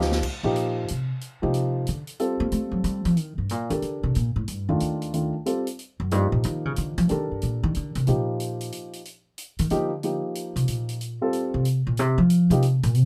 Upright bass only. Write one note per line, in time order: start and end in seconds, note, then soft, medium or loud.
0.00 0.22 D2 medium
0.43 0.85 A#2 medium
0.91 1.10 C3 medium
1.43 1.84 C3 medium
1.89 2.00 D3 medium
2.40 2.52 A#3 loud
2.52 2.71 A3 medium
2.72 2.83 F#3 medium
2.84 3.05 G3 medium
3.05 3.18 F3 medium
3.18 3.37 D#3 medium
3.38 3.52 G2 medium
3.51 3.70 A#2 medium
3.70 3.82 D#3 medium
3.82 4.03 D3 medium
4.03 4.15 C3 medium
4.16 4.35 A#2 medium
4.36 4.48 A2 medium
4.48 4.68 G2 medium
4.69 4.80 F2 medium
4.81 5.31 D#2 medium
6.00 6.12 F#2 medium
6.12 6.32 G2 medium
6.32 6.44 A#2 medium
6.45 6.65 D#3 medium
6.65 6.77 C#3 medium
6.78 6.97 D3 medium
6.98 7.09 F3 loud
7.11 7.30 D#3 medium
7.31 7.42 G2 soft
7.43 7.63 A#2 medium
7.63 7.75 D#3 medium
7.77 7.95 D3 medium
7.95 8.07 C3 medium
8.08 8.69 A#2 medium
9.59 9.70 D#3 medium
9.71 10.21 D3 medium
10.56 10.67 C3 medium
10.68 11.18 A#2 medium
11.54 11.84 C3 medium
11.87 11.99 A#2 medium
11.99 12.17 C3 medium
12.18 12.50 F3 medium
12.50 12.81 C3 medium
12.84 12.97 A#2 loud
12.97 13.05 C3 medium